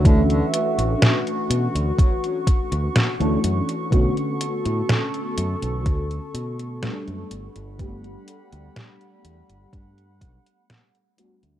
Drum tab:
HH |xxxxxxxxxxxxxxxx|xxxxxxxxxxxxxxxx|xxxxxxxxxxxxxxxx|
SD |----o-------o---|----o-------o---|----o-------o---|
BD |o-------o-o-----|o-------o-------|o-------o-o-----|